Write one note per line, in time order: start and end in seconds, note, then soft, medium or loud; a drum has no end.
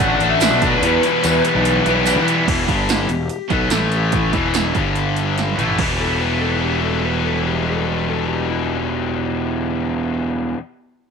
0.00 0.14 A1 loud
0.00 0.18 D3 medium
0.00 0.81 F#3 medium
0.00 0.10 A3 soft
0.00 0.17 A3 medium
0.00 0.19 A3 loud
0.00 0.19 D4 loud
0.00 0.19 F#4 loud
0.00 0.31 F#5 medium
0.08 0.19 A3 soft
0.08 0.20 D4 medium
0.08 0.19 F#4 medium
0.19 0.50 A1 medium
0.19 0.39 D3 medium
0.19 0.39 E3 medium
0.19 0.39 A3 medium
0.19 0.40 A3 medium
0.19 0.40 D4 medium
0.19 0.39 F#4 medium
0.19 0.40 F#4 medium
0.19 closed hi-hat medium
0.29 0.62 E5 loud
0.39 0.50 D3 medium
0.39 0.80 D3 medium
0.39 0.51 E3 medium
0.39 0.51 A3 medium
0.39 0.81 A3 medium
0.39 0.51 D4 loud
0.39 0.81 D4 medium
0.39 0.49 F#4 medium
0.39 0.82 F#4 medium
0.39 snare loud
0.39 closed hi-hat loud
0.39 tambourine medium
0.39 tambourine loud
0.50 0.75 B1 loud
0.50 0.73 A3 soft
0.50 0.72 D4 medium
0.50 0.70 F#4 medium
0.61 0.82 E4 medium
0.61 2.23 B4 medium
0.61 kick medium
0.61 closed hi-hat medium
0.71 0.82 A3 soft
0.71 0.83 D4 medium
0.71 0.82 F#4 medium
0.81 1.02 E2 medium
0.81 0.98 E2 loud
0.81 1.84 E2 medium
0.81 1.03 B2 medium
0.81 1.84 B2 medium
0.81 1.00 E3 medium
0.81 1.85 E3 medium
0.81 1.02 G3 medium
0.81 1.85 G3 loud
0.81 1.02 B3 medium
0.81 1.85 B3 loud
0.81 1.03 E4 loud
0.81 closed hi-hat loud
0.85 1.85 G4 loud
1.01 2.06 B2 medium
1.01 1.21 E3 medium
1.01 1.22 G3 medium
1.01 1.22 B3 medium
1.01 1.22 E4 medium
1.01 closed hi-hat medium
1.22 1.43 E2 medium
1.22 1.40 E2 medium
1.22 1.43 B2 medium
1.22 1.42 E3 medium
1.22 1.62 E3 medium
1.22 1.43 G3 loud
1.22 1.44 B3 medium
1.22 1.44 E4 loud
1.22 closed hi-hat loud
1.22 tambourine loud
1.22 tambourine medium
1.43 1.54 E3 medium
1.43 1.82 G3 medium
1.43 1.54 G3 medium
1.43 1.54 B3 medium
1.43 1.52 E4 medium
1.43 closed hi-hat medium
1.53 1.79 B1 loud
1.53 1.76 E3 medium
1.53 1.76 G3 medium
1.53 1.75 B3 medium
1.53 1.74 E4 medium
1.63 2.45 E3 medium
1.63 closed hi-hat loud
1.76 1.84 E3 soft
1.76 1.85 G3 medium
1.76 1.86 B3 medium
1.76 1.85 E4 medium
1.85 2.17 B1 medium
1.85 2.04 E2 medium
1.85 2.05 B2 medium
1.85 2.05 E3 medium
1.85 2.06 G3 medium
1.85 2.05 G3 medium
1.85 2.05 B3 medium
1.85 2.06 B3 medium
1.85 2.06 E4 medium
1.85 2.05 G4 medium
1.85 closed hi-hat medium
2.05 2.46 E2 medium
2.05 2.16 E2 medium
2.05 2.16 B2 medium
2.05 2.46 B2 medium
2.05 2.16 E3 loud
2.05 2.46 E3 medium
2.05 2.16 G3 loud
2.05 2.47 G3 medium
2.05 2.15 B3 loud
2.05 2.47 B3 medium
2.05 2.14 E4 loud
2.05 2.47 G4 medium
2.05 closed hi-hat loud
2.05 tambourine loud
2.15 2.40 E3 loud
2.15 2.37 E3 medium
2.15 2.37 G3 soft
2.15 2.35 B3 medium
2.15 2.34 E4 medium
2.24 2.46 E4 medium
2.28 closed hi-hat medium
2.36 2.48 E3 soft
2.36 2.48 G3 medium
2.36 2.47 B3 medium
2.36 2.46 E4 medium
2.47 2.66 E1 medium
2.47 2.66 E2 medium
2.47 2.67 B2 loud
2.47 2.68 E3 medium
2.47 2.68 E4 medium
2.47 kick loud
2.47 closed hi-hat medium
2.47 crash medium
2.67 3.06 G1 medium
2.67 3.08 G2 medium
2.67 3.08 D3 medium
2.67 3.09 G3 medium
2.67 2.89 D4 medium
2.67 kick medium
2.67 closed hi-hat medium
2.89 3.10 E4 medium
2.89 snare medium
2.89 closed hi-hat medium
2.89 tambourine medium
3.09 3.29 E1 medium
3.09 3.26 E2 medium
3.09 3.26 B2 medium
3.09 3.50 G4 medium
3.09 closed hi-hat medium
3.29 closed hi-hat medium
3.50 3.70 B1 medium
3.50 3.70 B2 medium
3.50 3.70 F#3 medium
3.50 3.71 B3 medium
3.50 3.92 A4 medium
3.50 kick medium
3.50 closed hi-hat soft
3.70 4.29 A1 medium
3.70 4.32 A2 medium
3.70 4.33 E3 medium
3.70 4.33 A3 medium
3.70 snare loud
3.70 closed hi-hat medium
3.70 tambourine medium
3.92 4.13 G4 medium
3.92 closed hi-hat medium
4.12 5.34 E4 medium
4.12 kick loud
4.12 closed hi-hat medium
4.33 4.72 E1 medium
4.33 4.74 E2 medium
4.33 4.74 B2 medium
4.33 4.74 E3 medium
4.33 kick medium
4.33 closed hi-hat medium
4.54 snare medium
4.54 closed hi-hat medium
4.54 tambourine medium
4.75 5.54 G1 medium
4.75 5.57 G2 medium
4.75 5.57 D3 medium
4.75 5.58 G3 medium
4.75 kick medium
4.75 closed hi-hat medium
4.96 closed hi-hat medium
5.16 closed hi-hat medium
5.38 snare medium
5.38 closed hi-hat medium
5.48 high tom soft
5.58 5.77 A1 medium
5.58 5.78 A2 medium
5.58 5.78 E3 medium
5.58 5.79 A3 medium
5.58 closed hi-hat soft
5.58 mid tom medium
5.68 floor tom medium
5.78 10.53 E1 medium
5.78 10.56 E2 medium
5.78 10.57 B2 medium
5.78 10.58 E3 medium
5.78 10.58 G3 medium
5.78 10.59 B3 medium
5.78 10.60 E4 medium
5.78 10.58 G4 medium
5.78 kick medium
5.78 crash medium
6.01 6.20 A4 medium
6.20 6.40 B4 medium
6.41 6.61 A4 medium
6.62 6.82 G4 medium
6.84 7.03 A4 medium
7.05 7.24 B4 medium
7.26 7.45 A4 medium
7.47 7.66 G4 medium
7.68 7.87 A4 medium
7.88 8.07 B4 medium
8.10 8.28 A4 medium
8.28 8.48 G4 medium
8.50 9.87 E4 medium